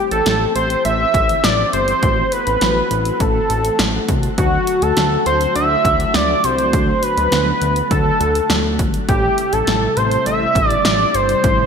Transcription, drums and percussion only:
0.11 closed hi-hat medium
0.26 snare medium
0.26 closed hi-hat medium
0.56 closed hi-hat medium
0.70 closed hi-hat soft
0.85 closed hi-hat medium
1.14 kick medium
1.14 closed hi-hat medium
1.29 closed hi-hat medium
1.44 snare loud
1.44 closed hi-hat medium
1.73 closed hi-hat medium
1.88 closed hi-hat soft
2.03 kick loud
2.03 closed hi-hat medium
2.32 closed hi-hat medium
2.47 closed hi-hat medium
2.61 snare medium
2.61 closed hi-hat medium
2.91 closed hi-hat medium
3.05 closed hi-hat soft
3.20 kick medium
3.20 closed hi-hat medium
3.50 closed hi-hat medium
3.65 closed hi-hat medium
3.79 snare loud
3.79 closed hi-hat medium
4.09 kick medium
4.09 closed hi-hat medium
4.23 closed hi-hat soft
4.38 kick loud
4.38 closed hi-hat medium
4.67 closed hi-hat medium
4.82 closed hi-hat soft
4.97 snare medium
4.97 closed hi-hat medium
5.26 closed hi-hat medium
5.41 closed hi-hat soft
5.56 closed hi-hat medium
5.85 kick medium
5.85 closed hi-hat medium
6.00 closed hi-hat medium
6.14 snare loud
6.14 closed hi-hat medium
6.44 closed hi-hat medium
6.58 closed hi-hat soft
6.73 kick loud
6.73 closed hi-hat medium
7.03 closed hi-hat medium
7.18 closed hi-hat medium
7.32 snare loud
7.32 closed hi-hat medium
7.62 closed hi-hat medium
7.76 closed hi-hat soft
7.91 kick loud
7.91 closed hi-hat medium
8.21 closed hi-hat medium
8.35 closed hi-hat medium
8.50 snare loud
8.50 closed hi-hat medium
8.79 kick medium
8.79 closed hi-hat medium
8.94 closed hi-hat soft
9.09 kick loud
9.09 closed hi-hat medium
9.38 closed hi-hat medium
9.53 closed hi-hat medium
9.67 snare medium
9.67 closed hi-hat medium
9.97 closed hi-hat medium
10.11 closed hi-hat soft
10.26 closed hi-hat medium
10.55 kick medium
10.55 closed hi-hat medium
10.71 closed hi-hat medium
10.85 snare loud
10.85 closed hi-hat medium
11.15 closed hi-hat medium
11.29 closed hi-hat soft
11.44 kick loud
11.44 closed hi-hat medium

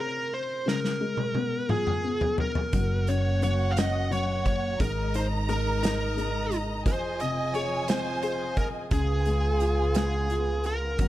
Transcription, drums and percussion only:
0.68 snare medium
0.85 snare medium
1.17 high tom medium
1.35 high tom medium
1.69 mid tom medium
1.87 mid tom medium
2.21 floor tom medium
2.38 floor tom loud
2.55 floor tom loud
2.73 kick loud
2.73 closed hi-hat medium
3.07 closed hi-hat medium
3.42 closed hi-hat medium
3.77 snare loud
3.77 closed hi-hat loud
4.12 closed hi-hat medium
4.46 kick medium
4.46 closed hi-hat soft
4.80 kick loud
4.80 closed hi-hat medium
5.14 closed hi-hat medium
5.49 closed hi-hat soft
5.83 snare loud
5.83 closed hi-hat loud
6.18 closed hi-hat medium
6.51 closed hi-hat soft
6.86 kick loud
6.86 closed hi-hat medium
7.20 closed hi-hat medium
7.54 closed hi-hat soft
7.88 snare loud
7.88 closed hi-hat loud
8.22 closed hi-hat medium
8.57 kick medium
8.57 closed hi-hat medium
8.91 kick loud
8.91 closed hi-hat medium
9.25 closed hi-hat medium
9.60 closed hi-hat medium
9.94 snare loud
9.94 closed hi-hat loud
10.30 closed hi-hat medium
10.63 closed hi-hat soft
10.98 kick loud
10.98 closed hi-hat medium

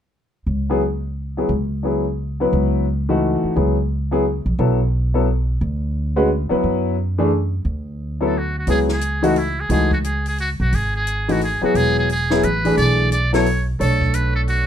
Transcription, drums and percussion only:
8.67 open hi-hat soft
8.89 snare soft
9.01 closed hi-hat soft
9.23 open hi-hat soft
9.36 open hi-hat soft
9.70 open hi-hat soft
9.91 kick soft
10.04 closed hi-hat soft
10.26 open hi-hat soft
10.38 open hi-hat soft
10.73 open hi-hat soft
11.07 closed hi-hat soft
11.29 open hi-hat soft
11.41 open hi-hat soft
11.75 open hi-hat soft
12.09 open hi-hat soft
12.30 snare soft
12.43 closed hi-hat soft
12.65 open hi-hat soft
12.78 open hi-hat soft
13.12 closed hi-hat soft
13.34 snare soft
13.34 open hi-hat soft
13.46 open hi-hat soft
13.81 open hi-hat soft
14.01 kick soft
14.14 closed hi-hat soft
14.48 open hi-hat soft

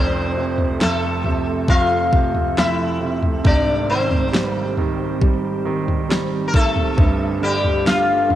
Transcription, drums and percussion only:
0.58 floor tom medium
0.81 snare loud
1.24 floor tom medium
1.68 kick loud
2.13 kick medium
2.35 floor tom medium
2.58 snare loud
3.22 floor tom medium
3.44 kick loud
3.44 floor tom loud
4.11 floor tom medium
4.35 snare loud
4.77 floor tom medium
5.22 kick loud
5.88 floor tom medium
6.11 snare loud
6.54 kick loud
6.76 floor tom medium
6.98 kick loud
6.98 floor tom loud
7.64 floor tom medium
7.87 snare loud
8.30 floor tom medium

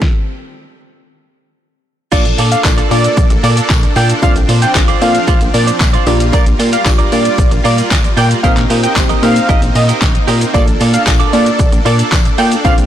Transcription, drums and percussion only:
0.02 kick loud
0.02 snare medium
2.12 kick loud
2.12 crash loud
2.12 tambourine medium
2.12 shaker medium
2.25 closed hi-hat medium
2.25 shaker medium
2.38 open hi-hat medium
2.38 shaker medium
2.52 closed hi-hat medium
2.52 shaker medium
2.64 kick loud
2.64 snare medium
2.64 clap loud
2.64 tambourine medium
2.64 shaker medium
2.78 closed hi-hat medium
2.78 shaker soft
2.91 open hi-hat medium
2.91 tambourine medium
2.91 shaker soft
3.04 closed hi-hat medium
3.04 shaker medium
3.17 kick loud
3.17 tambourine soft
3.17 shaker medium
3.30 closed hi-hat medium
3.30 shaker medium
3.44 open hi-hat medium
3.44 tambourine medium
3.44 shaker medium
3.57 closed hi-hat medium
3.57 shaker medium
3.70 kick loud
3.70 snare loud
3.70 clap loud
3.70 tambourine medium
3.70 shaker medium
3.83 closed hi-hat soft
3.83 shaker soft
3.96 open hi-hat medium
3.96 tambourine medium
3.96 shaker medium
4.10 closed hi-hat medium
4.10 shaker medium
4.23 kick loud
4.23 tambourine medium
4.23 shaker medium
4.36 closed hi-hat medium
4.36 shaker medium
4.49 open hi-hat medium
4.49 shaker medium
4.62 closed hi-hat medium
4.62 shaker medium
4.75 kick loud
4.75 snare loud
4.75 clap loud
4.75 tambourine medium
4.75 shaker medium
4.88 closed hi-hat soft
4.88 shaker medium
5.02 open hi-hat medium
5.02 tambourine medium
5.02 shaker soft
5.15 closed hi-hat medium
5.15 shaker medium
5.28 kick loud
5.28 tambourine soft
5.28 shaker medium
5.41 closed hi-hat medium
5.41 shaker medium
5.54 open hi-hat medium
5.54 tambourine medium
5.54 shaker medium
5.68 closed hi-hat medium
5.68 shaker medium
5.80 kick loud
5.80 snare loud
5.80 clap loud
5.80 tambourine medium
5.80 shaker medium
5.94 closed hi-hat soft
5.94 shaker soft
6.07 open hi-hat medium
6.07 tambourine medium
6.07 shaker medium
6.20 closed hi-hat medium
6.20 shaker medium
6.33 kick loud
6.33 tambourine medium
6.33 shaker medium
6.46 closed hi-hat medium
6.46 shaker medium
6.60 open hi-hat medium
6.60 shaker medium
6.73 closed hi-hat medium
6.73 shaker medium
6.86 kick loud
6.86 snare loud
6.86 clap loud
6.86 tambourine medium
6.86 shaker medium
6.99 closed hi-hat soft
6.99 shaker soft
7.12 open hi-hat medium
7.12 tambourine medium
7.12 shaker soft
7.25 closed hi-hat medium
7.25 shaker medium
7.38 kick loud
7.38 tambourine soft
7.38 shaker medium
7.51 closed hi-hat medium
7.51 shaker medium
7.65 open hi-hat medium
7.65 tambourine medium
7.65 shaker medium
7.78 closed hi-hat medium
7.78 shaker medium
7.91 kick loud
7.91 snare loud
7.91 clap loud
7.91 tambourine medium
7.91 shaker medium
8.04 closed hi-hat soft
8.04 shaker soft
8.17 open hi-hat medium
8.17 tambourine medium
8.17 shaker medium
8.31 closed hi-hat medium
8.31 shaker medium
8.44 kick loud
8.44 tambourine medium
8.44 shaker medium
8.57 clap medium
8.57 closed hi-hat medium
8.57 shaker medium
8.70 open hi-hat medium
8.70 tambourine soft
8.70 shaker medium
8.84 closed hi-hat medium
8.84 shaker medium
8.96 kick loud
8.96 snare loud
8.96 clap loud
8.96 tambourine medium
8.96 shaker medium
9.09 closed hi-hat soft
9.09 shaker medium
9.23 open hi-hat medium
9.23 tambourine medium
9.23 shaker soft
9.36 closed hi-hat medium
9.36 shaker medium
9.49 kick loud
9.49 tambourine soft
9.49 shaker medium
9.62 closed hi-hat medium
9.62 shaker medium
9.75 open hi-hat medium
9.75 tambourine soft
9.75 shaker medium
9.89 closed hi-hat medium
9.89 shaker medium
10.02 kick loud
10.02 snare loud
10.02 clap loud
10.02 tambourine medium
10.02 shaker medium
10.15 closed hi-hat soft
10.15 shaker soft
10.28 open hi-hat medium
10.28 tambourine medium
10.28 shaker medium
10.41 closed hi-hat medium
10.41 shaker medium
10.54 kick loud
10.54 tambourine medium
10.54 shaker medium
10.68 closed hi-hat medium
10.68 shaker medium
10.81 open hi-hat medium
10.81 tambourine soft
10.81 shaker medium
10.94 closed hi-hat medium
10.94 shaker medium
11.07 kick loud
11.07 snare medium
11.07 clap loud
11.07 tambourine medium
11.07 shaker medium
11.20 closed hi-hat medium
11.20 shaker medium
11.33 open hi-hat medium
11.33 tambourine medium
11.33 shaker soft
11.46 closed hi-hat medium
11.46 shaker medium
11.59 kick loud
11.59 tambourine soft
11.59 shaker medium
11.72 closed hi-hat medium
11.72 shaker medium
11.86 open hi-hat medium
11.86 tambourine soft
11.86 shaker medium
11.99 closed hi-hat medium
11.99 shaker medium
12.12 kick loud
12.12 snare loud
12.12 clap loud
12.12 tambourine medium
12.12 shaker medium
12.25 closed hi-hat soft
12.25 shaker soft
12.38 open hi-hat medium
12.38 tambourine medium
12.38 shaker medium
12.52 closed hi-hat medium
12.52 shaker medium
12.65 kick loud
12.65 tambourine medium
12.65 shaker medium
12.78 closed hi-hat medium
12.78 shaker medium

